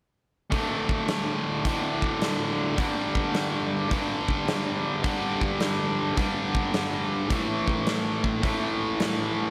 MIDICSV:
0, 0, Header, 1, 3, 480
1, 0, Start_track
1, 0, Tempo, 564972
1, 449, Time_signature, 4, 2, 24, 8
1, 8072, End_track
2, 0, Start_track
2, 0, Title_t, "Distorted electric guitar"
2, 0, Program_c, 0, 30
2, 429, Note_on_c, 0, 38, 64
2, 445, Note_on_c, 0, 45, 78
2, 456, Note_on_c, 0, 50, 71
2, 1384, Note_off_c, 0, 38, 0
2, 1394, Note_on_c, 0, 38, 67
2, 1398, Note_off_c, 0, 45, 0
2, 1404, Note_off_c, 0, 50, 0
2, 1411, Note_on_c, 0, 45, 71
2, 1428, Note_on_c, 0, 50, 79
2, 2346, Note_off_c, 0, 38, 0
2, 2350, Note_on_c, 0, 43, 75
2, 2357, Note_off_c, 0, 50, 0
2, 2361, Note_off_c, 0, 45, 0
2, 2367, Note_on_c, 0, 50, 69
2, 2381, Note_on_c, 0, 55, 78
2, 3308, Note_off_c, 0, 43, 0
2, 3312, Note_on_c, 0, 43, 63
2, 3319, Note_off_c, 0, 50, 0
2, 3328, Note_on_c, 0, 50, 65
2, 3341, Note_off_c, 0, 55, 0
2, 3344, Note_on_c, 0, 55, 72
2, 4262, Note_off_c, 0, 43, 0
2, 4272, Note_on_c, 0, 43, 76
2, 4279, Note_off_c, 0, 50, 0
2, 4290, Note_on_c, 0, 50, 76
2, 4304, Note_off_c, 0, 55, 0
2, 4307, Note_on_c, 0, 55, 83
2, 5225, Note_off_c, 0, 43, 0
2, 5235, Note_on_c, 0, 43, 69
2, 5240, Note_off_c, 0, 50, 0
2, 5251, Note_on_c, 0, 50, 69
2, 5262, Note_off_c, 0, 55, 0
2, 5266, Note_on_c, 0, 55, 77
2, 6191, Note_off_c, 0, 43, 0
2, 6194, Note_on_c, 0, 45, 80
2, 6200, Note_off_c, 0, 50, 0
2, 6207, Note_off_c, 0, 55, 0
2, 6212, Note_on_c, 0, 52, 81
2, 6225, Note_on_c, 0, 57, 82
2, 7149, Note_off_c, 0, 45, 0
2, 7159, Note_on_c, 0, 45, 65
2, 7160, Note_off_c, 0, 52, 0
2, 7166, Note_off_c, 0, 57, 0
2, 7176, Note_on_c, 0, 52, 77
2, 7193, Note_on_c, 0, 57, 78
2, 8072, Note_off_c, 0, 45, 0
2, 8072, Note_off_c, 0, 52, 0
2, 8072, Note_off_c, 0, 57, 0
2, 8072, End_track
3, 0, Start_track
3, 0, Title_t, "Drums"
3, 442, Note_on_c, 9, 36, 82
3, 443, Note_on_c, 9, 46, 41
3, 527, Note_off_c, 9, 36, 0
3, 528, Note_off_c, 9, 46, 0
3, 758, Note_on_c, 9, 36, 68
3, 843, Note_off_c, 9, 36, 0
3, 921, Note_on_c, 9, 46, 41
3, 924, Note_on_c, 9, 38, 85
3, 1006, Note_off_c, 9, 46, 0
3, 1009, Note_off_c, 9, 38, 0
3, 1402, Note_on_c, 9, 36, 83
3, 1402, Note_on_c, 9, 46, 43
3, 1487, Note_off_c, 9, 36, 0
3, 1487, Note_off_c, 9, 46, 0
3, 1718, Note_on_c, 9, 36, 68
3, 1803, Note_off_c, 9, 36, 0
3, 1883, Note_on_c, 9, 46, 41
3, 1886, Note_on_c, 9, 38, 84
3, 1968, Note_off_c, 9, 46, 0
3, 1971, Note_off_c, 9, 38, 0
3, 2362, Note_on_c, 9, 46, 42
3, 2363, Note_on_c, 9, 36, 86
3, 2447, Note_off_c, 9, 46, 0
3, 2448, Note_off_c, 9, 36, 0
3, 2678, Note_on_c, 9, 36, 68
3, 2763, Note_off_c, 9, 36, 0
3, 2842, Note_on_c, 9, 46, 40
3, 2845, Note_on_c, 9, 38, 91
3, 2927, Note_off_c, 9, 46, 0
3, 2930, Note_off_c, 9, 38, 0
3, 3322, Note_on_c, 9, 46, 40
3, 3324, Note_on_c, 9, 36, 89
3, 3407, Note_off_c, 9, 46, 0
3, 3409, Note_off_c, 9, 36, 0
3, 3640, Note_on_c, 9, 36, 64
3, 3725, Note_off_c, 9, 36, 0
3, 3808, Note_on_c, 9, 46, 38
3, 3811, Note_on_c, 9, 38, 87
3, 3893, Note_off_c, 9, 46, 0
3, 3896, Note_off_c, 9, 38, 0
3, 4283, Note_on_c, 9, 46, 39
3, 4284, Note_on_c, 9, 36, 91
3, 4368, Note_off_c, 9, 46, 0
3, 4369, Note_off_c, 9, 36, 0
3, 4600, Note_on_c, 9, 36, 68
3, 4685, Note_off_c, 9, 36, 0
3, 4761, Note_on_c, 9, 46, 42
3, 4765, Note_on_c, 9, 38, 90
3, 4846, Note_off_c, 9, 46, 0
3, 4850, Note_off_c, 9, 38, 0
3, 5246, Note_on_c, 9, 36, 85
3, 5246, Note_on_c, 9, 46, 42
3, 5331, Note_off_c, 9, 36, 0
3, 5331, Note_off_c, 9, 46, 0
3, 5563, Note_on_c, 9, 36, 70
3, 5648, Note_off_c, 9, 36, 0
3, 5726, Note_on_c, 9, 46, 42
3, 5729, Note_on_c, 9, 38, 86
3, 5811, Note_off_c, 9, 46, 0
3, 5814, Note_off_c, 9, 38, 0
3, 6206, Note_on_c, 9, 36, 90
3, 6206, Note_on_c, 9, 46, 44
3, 6291, Note_off_c, 9, 36, 0
3, 6291, Note_off_c, 9, 46, 0
3, 6521, Note_on_c, 9, 36, 71
3, 6606, Note_off_c, 9, 36, 0
3, 6684, Note_on_c, 9, 46, 43
3, 6688, Note_on_c, 9, 38, 94
3, 6769, Note_off_c, 9, 46, 0
3, 6773, Note_off_c, 9, 38, 0
3, 7001, Note_on_c, 9, 36, 72
3, 7086, Note_off_c, 9, 36, 0
3, 7165, Note_on_c, 9, 36, 90
3, 7166, Note_on_c, 9, 46, 41
3, 7250, Note_off_c, 9, 36, 0
3, 7250, Note_off_c, 9, 46, 0
3, 7647, Note_on_c, 9, 46, 40
3, 7650, Note_on_c, 9, 38, 87
3, 7732, Note_off_c, 9, 46, 0
3, 7735, Note_off_c, 9, 38, 0
3, 8072, End_track
0, 0, End_of_file